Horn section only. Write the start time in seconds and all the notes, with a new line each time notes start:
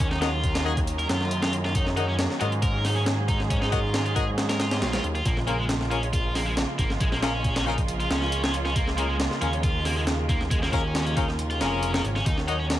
0.22 F#4 A#4 C#5 D#5
0.65 F#4 A#4 C#5 D#5
1.97 F#4 A#4 C#5 D#5
2.41 F#4 A#4 C#5 D#5
3.72 F#4 A#4 C#5 D#5
4.16 F#4 A#4 C#5 D#5
5.47 C#4 F4 G#4 A#4
5.91 C#4 F4 G#4 A#4
7.23 C#4 F4 G#4 A#4
7.66 C#4 F4 G#4 A#4
8.98 C#4 F4 G#4 A#4
9.42 C#4 F4 G#4 A#4
10.73 C#4 F4 G#4 A#4
11.17 C#4 F4 G#4 A#4
11.61 C#4 F4 G#4 A#4
11.94 C#4 F4 G#4 A#4
12.48 F#4 A#4 C#5 D#5